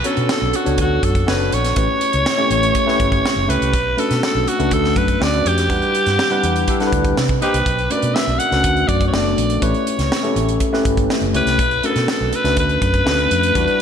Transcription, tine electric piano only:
0.04 0.46 B3 medium
0.04 0.10 C#4 medium
0.04 0.46 F#4 medium
0.04 0.46 A4 medium
0.04 0.46 C#5 medium
0.10 0.49 D4 medium
0.65 1.07 B3 medium
0.65 1.07 D4 medium
0.65 1.07 F#4 medium
0.65 1.08 A4 medium
0.65 1.08 C#5 medium
1.27 1.60 B3 medium
1.27 1.60 D4 medium
1.27 1.61 F#4 medium
1.27 1.61 A4 medium
1.27 1.61 C#5 medium
1.76 2.18 A3 medium
1.76 2.18 C#4 medium
1.76 2.18 E4 medium
1.76 2.18 G4 medium
1.76 2.18 B4 medium
2.38 2.71 A3 medium
2.38 2.71 C#4 medium
2.38 2.71 E4 medium
2.38 2.71 G4 medium
2.38 2.72 C#5 medium
2.86 3.28 A3 medium
2.86 3.28 C#4 medium
2.86 3.29 E4 medium
2.86 3.29 G4 medium
2.86 3.29 B4 medium
3.48 3.73 A3 medium
3.48 3.73 C#4 medium
3.48 3.73 E4 medium
3.48 3.73 G4 medium
3.48 3.73 B4 medium
3.97 4.39 A3 medium
3.97 4.39 C#4 medium
3.97 4.39 D4 medium
3.97 4.39 F#4 medium
3.97 4.39 B4 medium
4.59 5.00 A3 medium
4.59 5.01 C#4 medium
4.59 5.01 D4 medium
4.59 5.01 F#4 medium
4.59 5.01 B4 medium
5.20 5.53 A3 medium
5.20 5.53 C#4 medium
5.20 5.54 D4 medium
5.20 5.54 F#4 medium
5.20 5.54 B4 medium
5.69 6.11 G3 medium
5.69 6.11 D4 medium
5.69 6.11 E4 medium
5.69 6.11 B4 medium
5.69 6.11 F#5 medium
6.30 6.64 G3 medium
6.30 6.64 D4 medium
6.30 6.64 E4 medium
6.30 6.64 B4 medium
6.30 6.64 F#5 medium
6.80 7.17 G3 medium
6.80 7.17 D4 medium
6.80 7.17 E4 medium
6.80 6.86 A4 medium
6.80 7.17 F#5 medium
6.87 7.20 B4 medium
7.41 7.66 A#3 medium
7.41 7.66 D4 medium
7.41 7.66 D#4 medium
7.41 7.66 G4 medium
7.41 7.67 C5 medium
7.90 8.32 A3 medium
7.90 8.32 C#4 medium
7.90 8.32 D4 medium
7.90 8.32 F#4 medium
7.90 7.97 A#4 medium
7.97 8.35 B4 medium
8.51 8.93 A3 medium
8.51 8.93 C#4 medium
8.51 8.93 D4 medium
8.51 8.94 F#4 medium
8.51 8.94 B4 medium
9.12 9.46 A3 medium
9.12 9.46 B3 medium
9.12 9.46 D4 medium
9.12 9.47 F#4 medium
9.12 9.47 A4 medium
9.62 10.04 A3 medium
9.62 10.04 C#4 medium
9.62 10.04 E4 medium
9.62 10.04 G4 medium
9.62 10.04 B4 medium
10.23 10.57 A3 medium
10.23 10.57 C#4 medium
10.23 10.57 E4 medium
10.23 10.57 G4 medium
10.23 10.57 A4 medium
10.72 11.14 A3 medium
10.72 11.14 C#4 medium
10.72 11.15 E4 medium
10.72 11.15 G4 medium
10.72 11.15 B4 medium
11.34 11.59 A3 medium
11.34 11.59 C#4 medium
11.34 11.59 E4 medium
11.34 11.59 G4 medium
11.34 11.59 C#5 medium
11.83 12.25 A3 medium
11.83 12.25 C#4 medium
11.83 12.25 D4 medium
11.83 12.25 F#4 medium
11.83 11.90 A#4 medium
11.90 12.28 B4 medium
12.44 12.86 A3 medium
12.44 12.86 C#4 medium
12.44 12.86 D4 medium
12.44 12.87 F#4 medium
12.44 12.87 B4 medium
13.05 13.39 A3 medium
13.05 13.39 C#4 medium
13.05 13.39 D4 medium
13.05 13.40 F#4 medium
13.05 13.40 B4 medium
13.55 13.82 G3 medium
13.55 13.82 D4 medium
13.55 13.82 E4 medium
13.55 13.82 F#4 medium
13.55 13.82 B4 medium

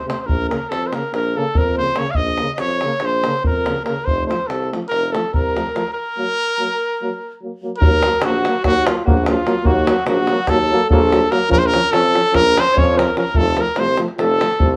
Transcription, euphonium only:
0.07 0.15 C3 medium
0.49 0.58 C#3 medium
0.95 1.02 C#3 medium
1.37 1.44 C#3 medium
1.80 1.87 C#3 medium
1.99 2.06 C#3 medium
2.41 2.49 C#3 medium
2.83 2.91 C#3 medium
3.26 3.34 C#3 medium
3.68 3.76 C#3 medium
3.88 3.95 C#3 medium
4.30 4.38 F3 medium
4.74 4.81 F3 medium
5.15 5.23 F3 medium
5.55 5.63 F3 medium
5.75 5.83 F3 medium
6.17 6.25 F#3 medium
6.59 6.67 F#3 medium
7.02 7.10 F#3 medium
7.42 7.49 F#3 soft
7.63 7.70 F#3 medium
7.81 7.90 F#3 medium
8.03 8.11 F#3 medium
8.23 8.32 F#3 medium
8.44 8.52 F#3 medium
8.62 8.71 F#3 medium
8.85 8.93 F#3 medium
9.05 9.14 F#3 medium
9.27 9.35 F#3 medium
9.46 9.54 F#3 medium
9.65 9.74 F#3 medium
9.87 9.95 F#3 medium
10.07 10.16 F#3 medium
10.29 10.37 F#3 medium
10.49 10.58 F#3 medium
10.70 10.78 F#3 medium
10.90 10.99 F#3 medium
11.11 11.19 F#3 medium
11.31 11.39 F#3 medium
11.49 11.58 F3 medium
11.72 11.80 F3 medium
11.91 12.00 F3 medium
12.14 12.22 F3 medium
12.33 12.42 F3 medium
12.55 12.63 F3 medium
12.76 12.84 F3 medium
12.95 13.03 F3 medium
13.16 13.23 F3 medium
13.35 13.44 F3 medium
13.57 13.65 F3 medium
13.76 13.85 F3 medium
13.98 14.06 F3 medium
14.17 14.26 F3 medium
14.38 14.46 F3 medium
14.58 14.67 F3 medium

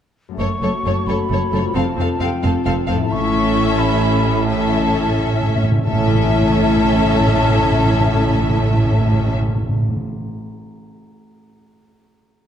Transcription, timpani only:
3.13 3.76 A2 medium
4.64 4.70 A2 soft
4.72 4.78 A2 soft
4.79 4.85 A2 soft
4.86 4.93 A2 soft
5.10 5.17 A2 soft
5.18 5.23 A2 soft
5.24 5.31 A2 soft
5.33 5.40 A2 medium
5.41 5.47 A2 medium
5.48 5.55 A2 medium
5.56 5.62 A2 medium
5.63 5.70 A2 medium
5.71 5.76 A2 medium
5.77 5.84 A2 medium
5.86 5.93 A2 medium
5.93 6.00 A2 medium
6.00 6.07 A2 medium
6.08 6.15 A2 medium
6.15 6.22 A2 medium
6.22 6.29 A2 medium
6.29 6.35 A2 medium
6.35 6.42 A2 medium
6.42 6.49 A2 medium
6.49 6.56 A2 medium
6.56 6.63 A2 medium
6.63 6.70 A2 medium
6.77 6.84 A2 medium
6.85 6.92 A2 medium
6.92 6.99 A2 medium
6.99 7.06 A2 medium
7.06 7.13 A2 medium
7.13 7.20 A2 medium
7.20 7.27 A2 medium
7.27 7.34 A2 medium
7.35 7.42 A2 medium
7.42 7.50 A2 medium
7.50 7.57 A2 medium
7.57 7.64 A2 medium
7.64 7.71 A2 medium
7.72 7.79 A2 medium
7.79 7.85 A2 medium
7.85 7.92 A2 medium
7.93 8.00 A2 medium
8.00 8.06 A2 medium
8.06 8.13 A2 medium
8.14 8.20 A2 medium
8.20 8.28 A2 medium
8.28 8.35 A2 medium
8.36 8.42 A2 medium
8.42 8.50 A2 medium
8.50 8.56 A2 medium
8.56 8.63 A2 medium
8.63 8.70 A2 medium
8.71 8.78 A2 medium
8.78 8.85 A2 medium
8.85 8.91 A2 medium
8.91 8.98 A2 medium
8.99 9.06 A2 medium
9.06 9.13 A2 medium
9.13 9.20 A2 medium
9.20 9.27 A2 medium
9.27 9.34 A2 medium
9.34 9.41 A2 medium
9.42 9.48 A2 medium
9.48 9.55 A2 medium
9.55 9.62 A2 medium
9.62 9.69 A2 medium
9.69 9.76 A2 medium
9.76 9.82 A2 medium
9.82 9.89 A2 medium
9.89 9.96 A2 medium
9.96 10.03 A2 medium

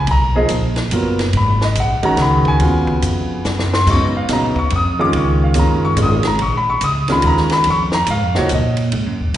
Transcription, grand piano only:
0.11 0.36 A#5 loud
0.36 0.49 F3 medium
0.36 0.49 A#3 medium
0.36 0.49 D#4 medium
0.36 0.49 G#4 medium
0.36 0.46 D#5 medium
0.92 1.17 F#3 medium
0.92 1.17 B3 medium
0.92 1.17 F4 medium
0.92 1.17 A#4 medium
1.37 1.62 B5 medium
1.64 1.77 D#5 medium
1.80 2.05 F#5 medium
2.03 2.57 D#3 medium
2.03 2.57 G#3 medium
2.03 2.58 C#4 medium
2.03 2.57 F#4 medium
2.03 2.19 A#5 loud
2.22 2.46 B5 loud
2.48 3.42 G#5 loud
2.61 3.78 C#3 medium
2.61 3.78 B3 medium
2.61 3.78 F4 medium
2.61 3.78 F#4 medium
3.74 3.88 C6 medium
3.88 4.12 C#3 medium
3.88 4.12 F#3 soft
3.88 4.12 B3 medium
3.88 4.12 D#4 medium
3.88 4.15 C#6 loud
4.17 4.30 F5 medium
4.29 4.54 C#3 medium
4.29 4.54 F#3 medium
4.29 4.54 B3 medium
4.29 4.54 D#4 medium
4.29 4.57 A#5 medium
4.59 4.72 C#6 medium
4.76 5.00 D#6 loud
4.99 5.53 D#3 medium
4.99 5.53 G#3 medium
4.99 5.53 C#4 medium
4.99 5.53 F4 medium
4.99 5.14 D6 loud
5.16 5.41 C#6 medium
5.44 5.57 F5 medium
5.55 5.96 D#3 medium
5.55 5.96 G#3 medium
5.55 5.96 C#4 medium
5.55 5.96 F4 medium
5.55 5.84 A#5 medium
5.85 5.98 C#6 loud
5.97 6.22 D#3 medium
5.97 6.22 G#3 medium
5.97 6.22 C#4 medium
5.97 6.22 F4 medium
6.03 6.26 D#6 loud
6.27 6.41 A#5 medium
6.42 6.54 C#6 medium
6.57 6.69 B5 medium
6.70 6.82 C#6 medium
6.84 7.09 D#6 loud
7.09 7.63 D#3 medium
7.09 7.63 G#3 medium
7.09 7.63 C#4 medium
7.09 7.64 F4 medium
7.09 7.25 B5 medium
7.27 7.52 A#5 loud
7.53 7.66 B5 loud
7.70 7.95 C#6 loud
7.94 8.08 A#5 loud
8.11 8.36 F5 medium
8.35 8.49 F3 medium
8.35 8.49 A#3 medium
8.35 8.49 D#4 medium
8.35 8.49 F#4 medium
8.35 8.51 C#5 medium
8.54 8.85 D#5 medium

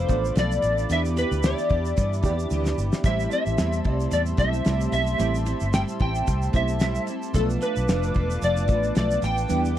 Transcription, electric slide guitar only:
0.00 0.39 C5 loud
0.39 0.93 D5 loud
0.92 0.99 E5 loud
1.18 1.45 B4 medium
1.45 2.48 D5 medium
3.06 3.32 E5 medium
3.33 3.93 E5 medium
3.93 4.13 D5 medium
4.13 4.20 D5 medium
4.39 4.92 E5 loud
4.93 5.70 E5 loud
5.74 5.82 G5 loud
6.02 6.51 G5 loud
6.56 7.05 E5 medium
7.35 7.43 A4 medium
7.63 8.39 B4 medium
8.44 8.96 D5 loud
8.98 9.25 D5 loud
9.24 9.79 G5 loud

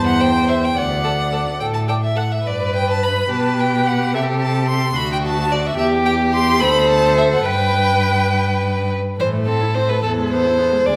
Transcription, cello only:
0.00 0.63 E2 medium
0.77 1.47 D2 soft
1.61 2.32 A2 soft
2.47 3.27 G2 soft
3.31 4.15 B2 soft
4.14 4.95 C3 soft
4.95 5.76 D2 soft
5.78 6.63 E2 medium
6.61 7.45 D2 medium
7.46 8.95 G2 soft
9.20 9.89 A2 soft
10.03 10.72 E2 soft
10.86 10.96 D2 soft

